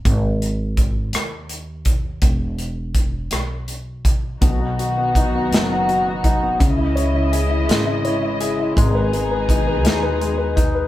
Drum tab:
HH |xxxxxx|xxxxxx|xxxxxx|xxxxxx|
SD |---r--|---r--|---o--|---o--|
BD |o-o--o|o-o--o|o-o--o|o-----|

HH |xxxxxx|
SD |---o--|
BD |o-o--o|